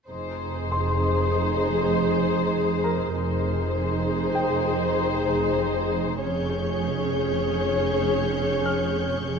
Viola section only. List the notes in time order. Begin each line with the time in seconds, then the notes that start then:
0.09 D#4 G#4
3.16 D#4 G#4
6.22 C#4 G#4
9.27 C#4 G#4